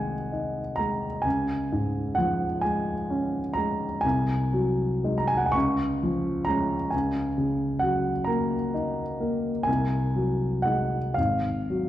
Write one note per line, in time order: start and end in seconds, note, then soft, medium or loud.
0.00 1.21 C2 soft
0.00 1.27 C3 soft
0.00 0.14 D#3 soft
0.00 0.61 G#3 soft
0.00 1.28 D#5 medium
0.00 1.28 F#5 medium
0.00 0.77 G#5 medium
0.32 1.06 D#4 soft
0.76 1.25 G#3 soft
0.76 1.24 A#5 medium
1.22 4.00 C#2 soft
1.22 2.16 G#5 medium
1.72 2.46 G#2 soft
2.15 2.92 F3 soft
2.15 2.62 F#5 medium
2.61 3.39 G#3 soft
2.61 3.56 G#5 medium
3.10 3.85 C#4 soft
3.53 4.04 G#3 soft
3.53 4.02 A#5 medium
4.01 5.51 C2 soft
4.01 5.15 G#5 medium
4.53 5.35 F#3 soft
5.04 5.51 G#3 soft
5.04 5.51 D#4 soft
5.18 5.27 A#5 medium
5.28 5.36 G#5 medium
5.37 5.46 F#5 medium
5.46 5.55 G#5 medium
5.52 6.89 C#2 medium
5.52 6.46 C#6 medium
6.03 6.75 F3 soft
6.45 6.89 G#3 soft
6.45 6.89 C#4 soft
6.45 6.91 A#5 medium
6.91 9.64 C#2 soft
6.91 7.82 G#5 medium
7.38 8.10 C#3 soft
7.79 8.55 F#3 soft
7.79 8.26 F#5 medium
8.24 9.01 A#3 soft
8.24 8.72 A#5 medium
8.74 9.49 D#4 soft
9.20 9.67 A#3 soft
9.63 11.13 C2 soft
9.63 10.64 G#5 medium
10.16 10.97 F#3 soft
10.62 11.13 G#3 soft
10.62 11.13 D#4 soft
10.62 11.16 F#5 medium
11.14 11.89 G#1 soft
11.14 11.89 F5 medium
11.70 11.89 F#3 soft